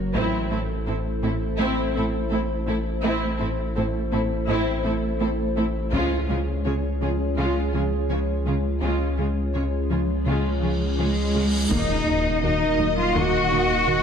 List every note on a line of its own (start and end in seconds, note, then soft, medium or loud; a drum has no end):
0.00 0.16 F#1 medium
0.00 0.11 F#3 medium
0.00 0.11 F#4 medium
0.00 0.11 A#4 medium
0.00 0.11 C#5 medium
0.14 3.03 A1 medium
0.14 0.23 A2 medium
0.14 0.36 A3 medium
0.14 3.02 A3 medium
0.14 0.48 C4 medium
0.14 0.49 C4 medium
0.14 0.48 E4 medium
0.14 0.49 E4 medium
0.14 3.02 E4 medium
0.14 3.02 A4 medium
0.14 3.02 C5 medium
0.14 taiko medium
0.51 0.59 A2 soft
0.51 0.59 C4 soft
0.51 0.59 E4 soft
0.51 0.73 E4 medium
0.51 0.59 A4 soft
0.87 0.95 A2 soft
0.87 0.95 C4 soft
0.87 0.95 E4 soft
0.87 1.09 A4 medium
0.87 0.96 A4 soft
0.87 0.95 C5 soft
1.23 1.31 A2 soft
1.23 1.31 C4 medium
1.23 1.45 C4 medium
1.23 1.31 E4 soft
1.23 1.31 E4 medium
1.23 1.31 A4 soft
1.59 1.67 A2 medium
1.59 1.81 A3 medium
1.59 1.93 C4 medium
1.59 1.93 E4 medium
1.95 2.04 A2 soft
1.95 2.17 C4 medium
1.95 2.04 C4 soft
1.95 2.04 E4 medium
1.95 2.04 E4 soft
1.95 2.04 A4 medium
2.31 2.39 A2 soft
2.31 2.39 C4 medium
2.31 2.53 C4 medium
2.31 2.39 E4 medium
2.31 2.40 A4 soft
2.31 2.40 C5 soft
2.67 2.75 A2 soft
2.67 2.75 C4 soft
2.67 2.89 E4 medium
2.67 2.75 E4 soft
2.67 2.76 E4 medium
2.67 2.76 A4 medium
3.03 5.94 A1 medium
3.03 3.12 A2 medium
3.03 5.89 A3 medium
3.03 3.26 A3 medium
3.03 3.37 C4 medium
3.03 3.38 C4 medium
3.03 3.37 E4 medium
3.03 5.89 E4 medium
3.03 3.38 E4 medium
3.03 5.89 A4 medium
3.03 5.89 C5 medium
3.40 3.48 A2 soft
3.40 3.48 C4 soft
3.40 3.61 E4 medium
3.40 3.48 E4 soft
3.40 3.48 A4 soft
3.76 3.84 A2 soft
3.76 3.84 C4 soft
3.76 3.84 E4 soft
3.76 3.84 A4 soft
3.76 3.98 A4 medium
3.76 3.84 C5 soft
4.12 4.21 A2 soft
4.12 4.34 C4 medium
4.12 4.20 C4 medium
4.12 4.20 E4 medium
4.12 4.20 E4 soft
4.12 4.21 A4 soft
4.48 4.56 A2 medium
4.48 4.70 A3 medium
4.48 4.82 C4 medium
4.48 4.82 E4 medium
4.84 4.93 A2 soft
4.84 4.92 C4 soft
4.84 5.06 C4 medium
4.84 4.92 E4 soft
4.84 4.93 E4 soft
4.84 4.93 A4 soft
5.20 5.28 A2 soft
5.20 5.28 C4 soft
5.20 5.42 C4 medium
5.20 5.28 E4 soft
5.20 5.29 A4 medium
5.20 5.29 C5 soft
5.56 5.65 A2 soft
5.56 5.64 C4 soft
5.56 5.64 E4 soft
5.56 5.78 E4 medium
5.56 5.65 E4 medium
5.56 5.64 A4 soft
5.92 8.82 C#2 medium
5.92 6.15 C#3 medium
5.92 6.01 C#3 medium
5.92 6.26 G#3 medium
5.92 6.26 C#4 medium
5.92 8.81 C#4 medium
5.92 6.26 F4 medium
5.92 8.81 F4 medium
5.92 8.81 G#4 medium
5.92 8.81 C#5 medium
5.92 taiko medium
6.29 6.38 C#3 soft
6.29 6.37 G#3 soft
6.29 6.51 G#3 medium
6.29 6.37 F4 soft
6.29 6.37 G#4 soft
6.65 6.74 C#3 soft
6.65 6.73 G#3 soft
6.65 6.87 C#4 medium
6.65 6.73 F4 soft
6.65 6.74 G#4 soft
6.65 6.74 C#5 soft
7.01 7.09 C#3 soft
7.01 7.23 F3 medium
7.01 7.09 G#3 soft
7.01 7.09 F4 soft
7.01 7.10 F4 soft
7.01 7.10 G#4 soft
7.37 7.59 C#3 medium
7.37 7.45 C#3 soft
7.37 7.71 G#3 soft
7.37 7.71 C#4 soft
7.37 7.71 F4 soft
7.37 7.72 F4 soft
7.73 7.82 C#3 soft
7.73 7.95 F3 medium
7.73 7.83 G#3 soft
7.73 7.81 F4 soft
7.73 7.83 F4 soft
7.73 7.81 G#4 soft
8.09 8.18 C#3 soft
8.09 8.31 F3 medium
8.09 8.18 G#3 soft
8.09 8.18 F4 soft
8.09 8.18 G#4 soft
8.09 8.18 C#5 soft
8.46 8.54 C#3 soft
8.46 8.67 G#3 soft
8.46 8.54 G#3 soft
8.46 8.54 F4 soft
8.46 8.54 G#4 soft
8.81 11.67 C#2 medium
8.81 9.03 C#3 medium
8.81 8.90 C#3 soft
8.81 9.16 G#3 soft
8.81 9.16 C#4 soft
8.81 11.67 C#4 medium
8.81 11.67 F4 medium
8.81 9.16 F4 soft
8.81 11.67 G#4 soft
8.81 11.67 C#5 medium
8.81 cymbal swell soft
9.18 9.26 C#3 soft
9.18 9.40 G#3 soft
9.18 9.27 G#3 soft
9.18 9.26 F4 soft
9.18 9.27 F4 soft
9.18 9.26 G#4 soft
9.54 9.63 C#3 soft
9.54 9.63 G#3 soft
9.54 9.76 C#4 soft
9.54 9.63 F4 soft
9.54 9.63 G#4 soft
9.54 9.62 C#5 soft
9.90 9.99 C#3 soft
9.90 10.12 F3 medium
9.90 9.99 G#3 soft
9.90 9.99 F4 soft
9.90 9.98 G#4 soft
10.26 10.48 C#3 medium
10.26 10.35 C#3 soft
10.26 10.60 G#3 soft
10.26 10.60 C#4 soft
10.26 10.60 F4 soft
10.62 10.71 C#3 soft
10.62 10.84 F3 medium
10.62 10.71 G#3 soft
10.62 10.70 F4 soft
10.62 10.70 G#4 soft
10.98 11.07 C#3 soft
10.98 11.21 F3 medium
10.98 11.06 G#3 soft
10.98 11.67 G#3 medium
10.98 11.07 F4 soft
10.98 11.07 G#4 soft
10.98 11.07 C#5 soft
11.34 11.43 C#3 soft
11.34 11.43 G#3 soft
11.34 11.57 G#3 soft
11.34 11.42 F4 soft
11.34 11.43 F4 soft
11.34 11.43 G#4 soft
11.70 14.03 D#1 medium
11.70 11.79 D#2 medium
11.70 11.93 D#2 medium
11.70 11.93 D#3 medium
11.70 14.03 A#3 soft
11.70 12.05 A#3 medium
11.70 14.03 A#3 medium
11.70 14.03 D#4 medium
11.70 12.42 D#4 medium
11.70 14.03 F#4 medium
11.70 14.03 A#4 medium
11.70 14.03 D#5 medium
11.70 14.03 D#5 soft
11.70 12.42 D#5 medium
11.70 taiko medium
11.70 impact medium
12.07 12.29 D#2 medium
12.43 12.52 D#2 soft
12.43 12.65 D#3 medium
12.43 12.51 A#3 soft
12.43 12.65 A#3 medium
12.43 12.97 D#4 medium
12.43 12.52 F#4 soft
12.43 12.97 D#5 medium
12.79 13.01 D#2 medium
12.79 12.88 D#2 soft
12.79 13.01 F#3 medium
12.79 12.87 A#3 soft
12.79 12.87 D#4 soft
12.98 13.16 F4 medium
12.98 13.15 F5 medium
13.15 13.37 D#2 medium
13.15 13.24 D#2 medium
13.15 13.37 D#3 medium
13.15 13.49 A#3 medium
13.15 14.03 F#4 medium
13.15 14.03 F#5 medium
13.51 13.60 D#2 soft
13.51 13.74 D#2 medium
13.51 13.59 A#3 soft
13.51 13.59 D#4 soft
13.51 13.73 D#4 medium
13.87 13.96 D#2 soft
13.87 14.03 D#3 medium
13.87 13.95 A#3 soft
13.87 14.03 A#3 medium
13.87 13.95 F#4 soft